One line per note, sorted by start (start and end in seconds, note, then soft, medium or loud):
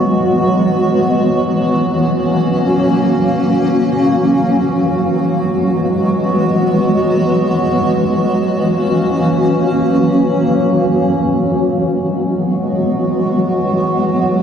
0.00 4.98 E3 medium
0.00 8.24 F#3 medium
0.00 1.72 G#3 medium
0.00 1.72 B3 medium
0.00 1.72 F#4 medium
1.75 4.98 A#3 medium
1.75 4.98 C#4 medium
1.75 11.51 F#4 medium
5.02 11.51 E3 medium
5.02 8.25 G#3 medium
5.02 8.25 B3 medium
8.28 11.52 F#3 medium
8.28 11.52 A#3 medium
8.28 11.52 C#4 medium
11.55 14.43 E3 medium
11.55 14.43 F#3 medium
11.55 14.43 G#3 medium
11.55 14.43 B3 medium
11.55 14.43 F#4 medium